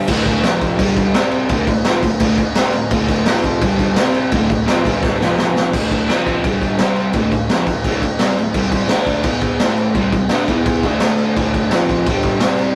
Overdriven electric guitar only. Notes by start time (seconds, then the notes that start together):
0.07 D2 A2 D3
0.42 F2 C3 F3
0.78 G2 D3 G3
1.15 C3 G3 C4
1.50 D2 A2 D3
1.67 D2 A2
1.84 F2 C3 F3
2.02 D2 A2
2.20 D2 A2 D3
2.39 muted overdriven electric guitar stroke
2.55 C3 G3 C4
2.74 D2 A2
2.92 D2 A2 D3
3.27 F2 C3 F3
3.62 G2 D3 G3
3.97 C3 G3 C4
4.32 D2 A2 D3
4.50 D2 A2
4.66 F2 C3 F3
4.85 G2 D3 G3
5.20 F2 C3 F3
5.73 D2 A2 D3
6.08 F2 C3 F3
6.44 G2 D3 G3
6.79 C3 G3 C4
7.14 D2 A2 D3
7.33 D2 A2
7.49 F2 C3 F3
7.68 D2 A2
7.85 D2 A2 D3
8.04 muted overdriven electric guitar stroke
8.19 C3 G3 C4
8.38 D2 A2
8.54 C3 G3 C4
8.90 D3 A3 D4
9.25 E3 B3 E4
9.60 A2 E3 A3
9.95 C3 G3 C4
10.14 C3 G3
10.31 D3 A3 D4
10.48 E3 B3 E4
10.84 D3 A3 D4
11.37 D2 A2 D3
11.72 F2 C3 F3
12.07 G2 D3 G3
12.41 C3 G3 C4